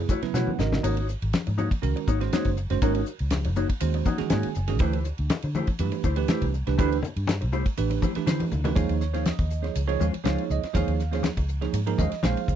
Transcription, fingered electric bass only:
0.22 muted fingered electric bass stroke soft
0.34 0.44 B2 medium
0.47 muted fingered electric bass stroke soft
0.59 0.79 G#1 medium
0.83 1.14 G#1 medium
1.22 1.31 G#1 medium
1.47 1.67 G#2 medium
1.83 1.93 C#2 medium
2.08 2.28 G#1 medium
2.45 2.65 F#1 medium
2.70 2.80 F#1 medium
2.82 3.02 G#1 loud
3.20 3.47 C#2 medium
3.45 3.65 F#1 loud
3.81 4.01 D#2 medium
4.20 muted fingered electric bass stroke soft
4.32 4.42 G#2 loud
4.45 muted fingered electric bass stroke soft
4.56 4.80 F#1 medium
4.80 5.11 D2 medium
5.19 5.28 D2 medium
5.44 5.63 D3 medium
5.79 5.90 G2 medium
6.04 6.24 D2 medium
6.42 6.62 C2 medium
6.67 6.77 C2 medium
6.79 6.99 D2 loud
7.16 7.44 G2 medium
7.42 7.62 C2 loud
7.79 7.98 A1 medium
8.16 muted fingered electric bass stroke soft
8.27 8.38 D3 medium
8.41 muted fingered electric bass stroke soft
8.52 8.72 D2 medium
8.77 8.87 D#2 medium
8.89 9.29 D#2 medium
9.39 9.69 D#2 medium
9.76 9.96 C#2 medium
10.01 10.11 D#2 medium
10.26 10.36 C#2 medium
10.50 10.61 C#2 medium
10.75 10.85 D#2 medium
10.87 11.27 D#2 medium
11.37 11.66 C#2 medium
11.73 11.93 G#2 medium
11.99 12.09 D#2 medium
12.23 12.34 A#1 medium
12.48 12.56 C#2 medium

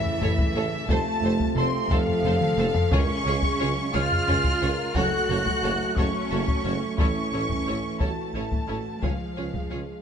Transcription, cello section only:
0.00 0.85 E3 medium
0.89 1.55 A3 medium
1.57 1.90 C4 medium
1.91 2.92 F3 medium
2.93 3.92 C#4 loud
3.94 4.93 F4 loud
4.96 5.97 F#4 medium
5.98 6.97 C#4 medium
6.99 7.98 C#4 medium
8.01 9.03 A3 medium
9.02 10.02 F3 soft

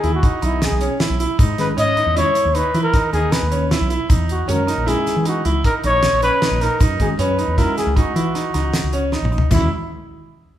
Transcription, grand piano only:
0.03 0.18 E4 medium
0.23 0.37 D#4 medium
0.42 0.70 D#4 medium
0.81 0.95 C#4 medium
1.00 1.14 E4 medium
1.20 1.34 E4 medium
1.39 1.67 D#4 medium
1.77 1.91 C#4 medium
1.97 2.11 D#4 medium
2.16 2.44 E4 medium
2.55 2.69 D#4 medium
2.74 2.88 E4 medium
2.93 3.08 D#4 medium
3.13 3.41 D#4 medium
3.51 3.66 C#4 medium
3.71 3.85 E4 medium
3.90 4.04 E4 medium
4.09 4.38 D#4 medium
4.48 4.62 C#4 medium
4.67 4.82 D#4 medium
4.86 5.15 E4 medium
5.25 5.40 D#4 medium
5.45 5.59 E4 medium
5.65 5.79 D#4 medium
5.84 6.12 D#4 medium
6.23 6.37 C#4 medium
6.42 6.56 D#4 medium
6.61 6.75 D#4 medium
6.80 7.09 D#4 medium
7.19 7.33 C#4 medium
7.38 7.53 D#4 medium
7.58 7.86 E4 medium
7.96 8.10 D#4 medium
8.16 8.30 E4 medium
8.35 8.49 D#4 medium
8.54 8.82 D#4 medium
8.93 9.07 C#4 medium
9.13 9.27 D#4 medium
9.32 9.46 D#4 medium
9.51 9.69 E4 medium

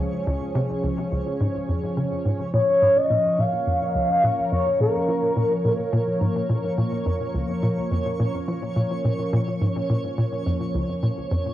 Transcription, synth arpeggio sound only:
0.27 0.52 C#2 loud
0.55 0.80 C3 loud
0.84 1.00 C#2 medium
1.12 1.29 C#2 medium
1.40 1.57 G#2 medium
1.69 1.79 F2 medium
1.97 2.07 C#3 medium
2.25 2.50 G#2 medium
2.54 2.78 A#2 loud
2.82 3.07 G#2 medium
3.10 3.27 A#2 medium
3.39 3.55 A#2 medium
3.67 3.83 F2 medium
3.95 4.05 C#2 medium
4.24 4.34 A#2 medium
4.52 4.77 F2 medium
4.80 4.97 A#2 medium
5.08 5.18 F3 medium
5.36 5.61 A#2 medium
5.65 5.75 A#2 medium
5.93 6.18 A#2 loud
6.21 6.46 G#2 medium
6.50 6.66 A#2 medium
6.78 6.95 A#2 medium
7.06 7.23 F2 medium
7.34 7.45 C#2 medium
7.63 7.73 A#2 medium
7.91 8.16 F2 medium
8.20 8.36 A#2 medium
8.48 8.58 F3 medium
8.76 9.01 A#2 medium
9.05 9.15 A#2 medium
9.33 9.58 A#2 loud
9.61 9.86 G#2 medium
9.90 10.06 A#2 medium
10.18 10.34 A#2 medium
10.46 10.63 F2 medium
10.75 10.84 C#2 medium
11.03 11.13 A#2 medium
11.31 11.54 F2 medium

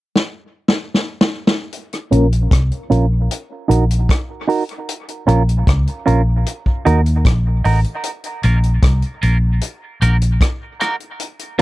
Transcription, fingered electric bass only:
2.12 2.48 A#1 medium
2.51 2.70 C2 medium
2.91 3.27 A#1 medium
3.70 4.06 A#1 medium
5.28 5.64 A#1 medium
5.67 5.86 C#2 medium
6.07 6.44 A#1 medium
6.86 7.22 D#2 medium
7.25 7.62 A#1 medium
7.65 7.83 A1 medium
8.44 8.80 A#1 medium
8.83 9.01 C2 medium
9.23 9.59 A#1 medium
10.02 10.38 A#1 medium

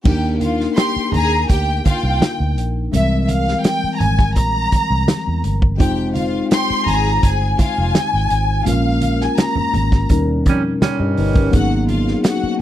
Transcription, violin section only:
0.78 1.11 C6 loud
1.15 1.48 A#5 medium
1.51 1.86 G5 medium
1.88 2.54 G5 medium
2.94 3.21 E5 medium
3.25 3.30 E5 medium
3.30 3.65 F5 medium
3.65 3.92 G5 medium
3.95 4.01 A#5 medium
4.01 4.37 G#5 medium
4.36 5.40 A#5 medium
6.55 6.87 C6 loud
6.90 7.25 A#5 loud
7.26 7.61 G#5 medium
7.63 8.65 G#5 loud
8.68 9.21 F5 medium
9.23 9.40 G#5 medium
9.42 10.12 A#5 medium

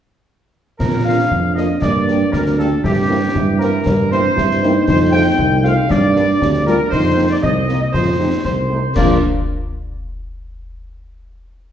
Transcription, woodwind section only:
0.81 0.92 A#4 medium
1.06 1.54 F5 medium
1.57 1.81 D#5 medium
1.82 2.33 D5 medium
2.33 2.58 A#4 medium
2.59 2.82 A4 medium
2.84 3.57 G4 medium
3.60 4.08 A#4 medium
4.11 4.84 C5 medium
4.88 5.12 C5 medium
5.12 5.60 G5 medium
5.64 5.76 F5 medium
5.90 6.63 D5 medium
6.68 6.91 A#4 medium
6.92 7.28 C5 medium
7.30 7.36 D5 medium
7.43 7.79 D#5 medium
7.82 7.88 D#5 medium
7.93 8.41 C5 medium
8.44 8.92 C5 medium
8.96 9.17 A#4 medium

